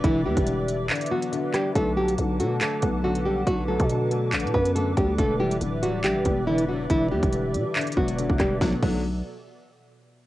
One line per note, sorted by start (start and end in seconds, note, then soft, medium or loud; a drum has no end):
0.00 0.04 D3 medium
0.00 0.26 E3 medium
0.00 1.77 G3 medium
0.00 0.47 B3 medium
0.00 0.90 D4 medium
0.00 1.71 B4 medium
0.00 1.72 D5 medium
0.00 1.72 E5 medium
0.00 1.72 D6 medium
0.04 0.27 E1 loud
0.04 0.45 D3 medium
0.04 0.21 E3 medium
0.04 0.20 E4 loud
0.04 kick loud
0.04 closed hi-hat medium
0.25 0.36 E2 loud
0.25 1.33 E3 medium
0.25 0.86 G3 medium
0.25 0.86 G4 medium
0.37 0.90 E1 loud
0.37 kick loud
0.37 closed hi-hat medium
0.47 0.88 D3 medium
0.47 closed hi-hat medium
0.68 closed hi-hat medium
0.90 1.31 D3 medium
0.90 clap loud
0.90 closed hi-hat soft
0.95 closed hi-hat medium
1.01 closed hi-hat medium
1.06 closed hi-hat medium
1.11 1.52 F#3 medium
1.11 1.76 B3 medium
1.11 1.52 F#4 medium
1.22 closed hi-hat medium
1.32 1.74 D3 medium
1.32 closed hi-hat medium
1.54 1.71 G3 medium
1.54 1.76 D4 medium
1.54 1.70 G4 medium
1.54 cross-stick medium
1.54 clap medium
1.54 closed hi-hat medium
1.75 2.17 B1 loud
1.75 2.17 D3 medium
1.75 1.92 A3 medium
1.75 1.92 A4 loud
1.75 8.57 B4 medium
1.75 5.15 F#5 medium
1.75 5.15 A5 medium
1.75 8.57 D6 medium
1.75 kick loud
1.75 closed hi-hat medium
1.97 3.04 F#3 medium
1.97 2.14 G3 medium
1.97 2.13 G4 medium
2.08 closed hi-hat medium
2.18 2.41 B1 loud
2.18 2.60 D3 medium
2.18 closed hi-hat medium
2.40 2.60 B2 medium
2.40 2.56 F#3 medium
2.40 3.47 A3 medium
2.40 2.56 F#4 medium
2.40 closed hi-hat medium
2.61 3.03 D3 medium
2.61 3.02 A3 medium
2.61 3.02 A4 medium
2.61 clap loud
2.61 closed hi-hat medium
2.82 3.44 B1 loud
2.82 3.90 B3 medium
2.82 kick medium
2.82 closed hi-hat medium
3.04 3.46 D3 loud
3.04 3.21 F#3 medium
3.04 3.20 F#4 medium
3.15 closed hi-hat medium
3.25 3.42 G3 medium
3.25 4.33 D4 medium
3.25 3.42 G4 medium
3.47 3.78 B1 loud
3.47 3.88 D3 medium
3.47 3.64 F#3 medium
3.47 3.63 F#4 loud
3.47 kick loud
3.47 closed hi-hat medium
3.68 4.76 F#3 medium
3.68 4.29 A3 medium
3.68 4.29 A4 medium
3.80 4.34 B2 loud
3.80 kick loud
3.80 closed hi-hat medium
3.90 4.31 D3 medium
3.90 closed hi-hat medium
4.11 5.18 A3 loud
4.11 closed hi-hat medium
4.33 4.45 A1 loud
4.33 4.74 D3 medium
4.33 clap loud
4.33 closed hi-hat medium
4.40 closed hi-hat medium
4.44 4.54 B2 loud
4.44 closed hi-hat soft
4.54 4.95 F#2 loud
4.54 5.18 B3 medium
4.54 4.71 B3 medium
4.54 4.70 B4 medium
4.54 kick medium
4.65 closed hi-hat medium
4.75 5.17 D3 medium
4.75 4.92 A3 medium
4.75 4.92 A4 medium
4.75 closed hi-hat medium
4.97 5.17 D2 loud
4.97 5.14 G3 medium
4.97 5.18 D4 medium
4.97 5.13 G4 medium
4.97 kick loud
4.97 closed hi-hat medium
5.18 5.60 E1 loud
5.18 5.60 D3 medium
5.18 5.35 A3 medium
5.18 5.35 A4 loud
5.18 8.58 D5 medium
5.18 8.58 E5 medium
5.18 kick loud
5.18 closed hi-hat medium
5.40 6.47 E3 medium
5.40 5.56 G3 medium
5.40 5.56 G4 medium
5.51 closed hi-hat medium
5.61 6.06 D1 loud
5.61 6.02 D3 medium
5.61 closed hi-hat medium
5.83 5.99 F#3 medium
5.83 6.90 G3 medium
5.83 5.99 F#4 medium
5.83 closed hi-hat medium
6.04 6.17 B1 loud
6.04 6.46 D3 medium
6.04 6.45 G3 medium
6.04 6.44 G4 loud
6.04 clap loud
6.04 closed hi-hat medium
6.15 6.25 D1 loud
6.25 6.87 E1 loud
6.25 7.33 B3 medium
6.25 kick medium
6.25 closed hi-hat medium
6.47 6.88 D3 medium
6.47 6.64 E3 medium
6.47 6.63 E4 medium
6.58 closed hi-hat medium
6.68 6.85 F#3 medium
6.68 7.76 D4 medium
6.68 6.85 F#4 medium
6.90 7.13 E1 loud
6.90 7.31 D3 medium
6.90 7.07 E3 medium
6.90 7.06 E4 loud
6.90 kick loud
6.90 closed hi-hat medium
7.11 7.22 E2 loud
7.11 8.18 E3 medium
7.11 7.72 G3 medium
7.11 7.72 G4 medium
7.23 7.56 E1 loud
7.23 kick loud
7.23 closed hi-hat medium
7.32 7.74 D3 medium
7.32 closed hi-hat medium
7.54 7.65 B2 loud
7.54 closed hi-hat medium
7.76 8.17 D3 medium
7.76 clap loud
7.76 closed hi-hat soft
7.81 closed hi-hat medium
7.87 closed hi-hat medium
7.92 closed hi-hat medium
7.97 8.28 E1 loud
7.97 8.38 F#3 medium
7.97 8.60 B3 medium
7.97 8.37 F#4 medium
7.97 kick medium
8.08 closed hi-hat medium
8.18 8.60 D3 medium
8.18 closed hi-hat medium
8.30 8.39 E1 loud
8.30 kick loud
8.40 8.60 E1 loud
8.40 8.56 G3 medium
8.40 8.61 D4 medium
8.40 8.56 G4 medium
8.40 kick loud
8.40 cross-stick medium
8.40 clap medium
8.40 closed hi-hat medium
8.61 8.74 B1 loud
8.61 8.81 B2 medium
8.61 8.74 D3 medium
8.61 8.74 F#3 medium
8.61 8.74 A3 medium
8.61 8.74 B3 loud
8.61 8.81 B3 medium
8.61 8.81 A4 medium
8.61 8.81 D5 medium
8.61 kick loud
8.61 snare medium
8.83 9.23 B1 loud
8.83 9.03 D3 medium
8.83 9.03 F#3 medium
8.83 9.03 A3 medium
8.83 9.03 B3 loud
8.83 kick loud
8.83 crash medium